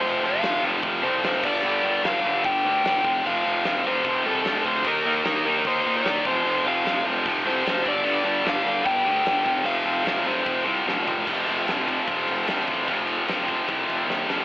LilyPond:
<<
  \new Staff \with { instrumentName = "Overdriven electric guitar" } { \time 4/4 \key f \mixolydian \tempo 4 = 149 c''8 f''4 r4 c''4 d''8~ | d''4 f''4 g''2 | f''4. c''4 a'4 c''8 | bes'4 bes'4 c''8. d''8. c''8~ |
c''8 f''4 r4 c''4 d''8~ | d''4 f''4 g''2 | f''4. c''4 r4. | r1 |
r1 | }
  \new Staff \with { instrumentName = "Distorted electric guitar" } { \clef bass \time 4/4 \key f \mixolydian <f, c f>8 <f, c f>8 <f, c f>8 <f, c f>8 <f, c f>8 <f, c f>8 <f, c f>8 <g, d g>8 | <g, d g>8 <g, d g>8 <g, d g>8 <g, d g>8 <g, d g>8 <g, d g>8 <g, d g>8 <f, c f>8 | <f, c f>8 <f, c f>8 <f, c f>8 <f, c f>8 <f, c f>8 <f, c f>8 <f, c f>8 <f, c f>8 | <ees bes ees'>8 <ees bes ees'>8 <ees bes ees'>8 <ees bes ees'>8 <ees bes ees'>8 <ees bes ees'>8 <ees bes ees'>8 <f, c f>8 |
<f, c f>8 <f, c f>8 <f, c f>8 <f, c f>8 <f, c f>8 <f, c f>8 <f, c f>8 <g, d g>8 | <g, d g>8 <g, d g>8 <g, d g>8 <g, d g>8 <g, d g>8 <g, d g>8 <g, d g>8 <f, c f>8 | <f, c f>8 <f, c f>8 <f, c f>8 <f, c f>8 <f, c f>8 <f, c f>8 <f, c f>8 <f, c f>8 | <f, c f>4 <f, c f>8 <f, c f>8 <f, c f>4 <f, c f>8 <f, c f>8 |
<f, c f>4 <f, c f>8 <f, c f>8 <f, c f>4 <f, c f>8 <f, c f>8 | }
  \new Staff \with { instrumentName = "Picked electric bass" } { \clef bass \time 4/4 \key f \mixolydian f,,8 f,,8 f,,8 f,,8 f,,8 c,8 f,,8 g,,8 | g,,8 g,,8 g,,8 g,,8 g,,8 d,8 g,,8 f,,8 | f,,8 f,,8 f,,8 f,,8 f,,8 c,8 f,,8 d,8 | ees,8 ees,8 ees,8 ees,8 ees,8 bes,8 ees,8 f,,8 |
f,,8 f,,8 f,,8 f,,8 f,,8 c,8 fis,,8 g,,8 | g,,8 g,,8 g,,8 g,,8 g,,8 d,8 g,,8 f,,8 | f,,8 f,,8 f,,8 f,,8 f,,8 c,8 f,,8 f,,8 | f,,8 f,,8 f,,4 f,,8 f,,8 f,,8 a,,8 |
f,,4 f,,4 c,8 f,,8 ees,8 f,,8 | }
  \new DrumStaff \with { instrumentName = "Drums" } \drummode { \time 4/4 hho4 <hho sn>4 <hho bd>4 <hho sn>8 <cymc bd>8 | r4 <hho sn>4 <hho bd>4 <hho sn>8 bd8 | hho4 <hho sn>4 <hho bd>4 <hho sn>8 bd8 | <cymc bd>4 <hho sn>4 <hho bd>4 <hho sn>8 bd8 |
hho4 <hho sn>4 <hho bd>4 <hho sn>8 bd8 | hho4 <hho sn>4 <hho bd>4 <hho sn>8 bd8 | hho4 <hho sn>4 <hho bd>4 sn8 tomfh8 | <cymc bd>8 cymc8 <cymc sn>8 <cymc bd>8 <cymc bd>8 cymc8 <cymc sn>8 <cymc bd>8 |
<cymc bd>8 cymc8 <cymc sn>8 <cymc bd>8 <cymc bd>8 cymc8 sn8 sn8 | }
>>